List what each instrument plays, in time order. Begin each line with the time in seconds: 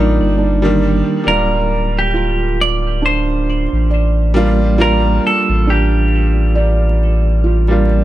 Already playing: sub bass A1, upright piano G3 A#3 D4 D#4, felt piano F4 D5
0.20 sub bass G1
0.38 felt piano D4
0.62 upright piano D#3 G3 A#3 D4
1.24 sub bass D1, upright piano G3 A#3 D4, felt piano D5
1.28 upright piano F4, clean electric guitar A#4
1.99 clean electric guitar G4
2.14 felt piano F4
2.61 clean electric guitar D5
3.02 felt piano D4, clean electric guitar C5
3.73 sub bass A1
3.90 felt piano D5
4.34 upright piano G3 A#3 D4 F4
4.78 upright piano G3 A#3 D4 F4, felt piano F4, clean electric guitar A#4
5.27 clean electric guitar A4
5.49 sub bass A1
5.67 felt piano D4, clean electric guitar G4
6.55 felt piano D5
7.44 felt piano F4
7.68 upright piano G3 A#3 D4 F4